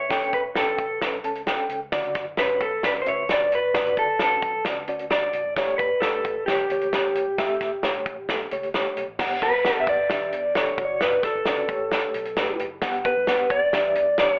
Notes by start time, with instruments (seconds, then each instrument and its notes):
Already playing: clean electric guitar C#5
0.09 fingered electric bass A1, reed electric piano A2 C#4 A4 G5, kick, snare, closed hi-hat
0.23 closed hi-hat
0.33 fingered electric bass E1, clean electric guitar B4, kick, closed hi-hat
0.55 fingered electric bass G1, reed electric piano C#4 A4 G5, clean electric guitar A4, snare, closed hi-hat
0.79 fingered electric bass A1, kick, closed hi-hat
1.01 fingered electric bass B1, reed electric piano C#4 A4 B4, kick, snare, closed hi-hat
1.24 fingered electric bass C#2, reed electric piano C#4 A4 A5, closed hi-hat
1.35 closed hi-hat
1.47 fingered electric bass G1, reed electric piano C#4 A4 G5, snare, closed hi-hat
1.69 fingered electric bass C#2, closed hi-hat
1.92 fingered electric bass D2, reed electric piano C#3 D3 F#4 D5, kick, snare, closed hi-hat
2.04 closed hi-hat
2.15 fingered electric bass F#1, kick, snare, closed hi-hat
2.37 fingered electric bass A1, reed electric piano C#4 F#4 C#5, clean electric guitar B4, snare, closed hi-hat
2.60 fingered electric bass B1, clean electric guitar A4, kick, closed hi-hat
2.83 fingered electric bass C#2, reed electric piano C#4 F#4 D5, clean electric guitar B4, kick, snare, closed hi-hat
3.02 clean electric guitar C5
3.06 fingered electric bass D2, reed electric piano C#4 F#4 E5, clean electric guitar C#5, closed hi-hat
3.28 fingered electric bass A1, reed electric piano C#3 F#4 D5, clean electric guitar D5, snare, closed hi-hat
3.52 fingered electric bass C#2, clean electric guitar B4, closed hi-hat
3.74 fingered electric bass D2, reed electric piano C#3 D3 F#4 D5, kick, snare, closed hi-hat
3.86 closed hi-hat
3.97 fingered electric bass F#1, clean electric guitar A4, kick, closed hi-hat
4.19 fingered electric bass A1, reed electric piano C#4 F#4 A4, clean electric guitar A4, snare, closed hi-hat
4.42 fingered electric bass B1, kick, closed hi-hat
4.65 fingered electric bass C#2, reed electric piano C#4 F#4 D5, kick, snare, closed hi-hat
4.88 fingered electric bass D2, reed electric piano C#4 F#4 D5, closed hi-hat
4.99 closed hi-hat
5.10 reed electric piano C#3 F#4 D5, clean electric guitar D5, snare, closed hi-hat
5.33 fingered electric bass A1, closed hi-hat
5.45 fingered electric bass G#1
5.56 fingered electric bass A1, reed electric piano A2 A3 G4 C#5, clean electric guitar C#5, kick, snare, closed hi-hat
5.78 fingered electric bass E1, clean electric guitar B4, kick, closed hi-hat
6.00 fingered electric bass G1, reed electric piano A3 G4 B4, clean electric guitar A4, snare, closed hi-hat
6.25 fingered electric bass A1, kick, closed hi-hat
6.46 fingered electric bass B1, reed electric piano A3 G4 C#5, clean electric guitar G4, kick, snare, closed hi-hat
6.69 fingered electric bass C#2, reed electric piano A3 G4 C#5, closed hi-hat
6.81 closed hi-hat
6.93 reed electric piano A3 G4 C#5, snare, closed hi-hat
7.15 fingered electric bass A1, closed hi-hat
7.26 fingered electric bass G#1
7.38 fingered electric bass A1, reed electric piano A2 A3 G4 E5, kick, snare, closed hi-hat
7.61 fingered electric bass E1, kick, snare, closed hi-hat
7.83 fingered electric bass G1, reed electric piano A3 G4 C#5, snare, closed hi-hat
8.06 fingered electric bass A1, kick, closed hi-hat
8.29 fingered electric bass B1, reed electric piano A3 G4 A4, kick, snare, closed hi-hat
8.51 fingered electric bass C#2, reed electric piano A3 G4 C#5, closed hi-hat
8.63 closed hi-hat
8.74 fingered electric bass G1, reed electric piano A3 G4 C#5, snare, closed hi-hat
8.97 fingered electric bass B1, closed hi-hat
9.08 fingered electric bass A1
9.19 fingered electric bass G1, reed electric piano G2 B3 G4 F#5, kick, snare, crash
9.42 clean electric guitar B4, kick, snare, closed hi-hat
9.53 fingered electric bass G1
9.65 reed electric piano B3 G4 F#5, snare, closed hi-hat
9.80 clean electric guitar E5
9.87 fingered electric bass F#1, clean electric guitar D5, kick, closed hi-hat
9.99 fingered electric bass G1
10.09 fingered electric bass E1, reed electric piano E3 D4 G4 E5, kick, snare, closed hi-hat
10.32 fingered electric bass E2, closed hi-hat
10.55 reed electric piano D4 G4 A4, clean electric guitar C#5, snare, closed hi-hat
10.78 fingered electric bass F#1, reed electric piano C#3 F#4 C#5, kick, closed hi-hat
10.85 reed electric piano D5
11.01 clean electric guitar B4, snare, closed hi-hat
11.23 clean electric guitar A4, kick, snare, closed hi-hat
11.35 fingered electric bass F#1
11.45 fingered electric bass F#1, reed electric piano C#4 F#4 D5, snare, closed hi-hat
11.69 fingered electric bass A1, reed electric piano A2 A3 G4 C#5, kick, closed hi-hat
11.92 snare, closed hi-hat
12.04 muted fingered electric bass stroke
12.14 fingered electric bass B1, closed hi-hat
12.25 closed hi-hat
12.36 reed electric piano A3 G4 B4, snare, closed hi-hat
12.59 fingered electric bass F#1, closed hi-hat
12.82 fingered electric bass G1, reed electric piano G2 B3 G4 F#5, kick, snare, closed hi-hat
12.94 closed hi-hat
13.05 clean electric guitar B4, kick, closed hi-hat
13.17 fingered electric bass G1
13.27 reed electric piano B3 G4 F#5, snare, closed hi-hat
13.50 fingered electric bass F#1, clean electric guitar D5, kick, closed hi-hat
13.62 fingered electric bass G1
13.73 fingered electric bass E1, reed electric piano E3 D4 G4 E5, kick, snare, closed hi-hat
13.95 fingered electric bass E2, closed hi-hat
14.18 reed electric piano D4 G4 C#5, clean electric guitar D5, snare, closed hi-hat
14.30 clean electric guitar C#5